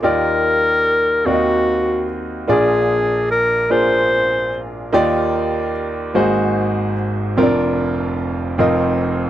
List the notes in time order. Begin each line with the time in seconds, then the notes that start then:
0.03 D#2 D#3 A#3 D#4 F4 G4 A#4 D5
1.25 D#2 D#3 C4 D#4 F#4 A#4 D5
1.33 D#5
2.48 A#1 A#2 A#3 D4 F4 G#4 D5
2.52 G#4
3.31 A#4
3.70 A#3 D4 F4 G#4 A#4 C5
4.92 D#2 D#3 A#3 D#4 F4 G4 D5
6.14 G#1 G#2 A#3 D#4 F#4 G#4 C5
7.37 F1 F2 C4 F4 A#4
7.43 D4
8.58 F1 F2 C4 D#4 F4 A#4 D#5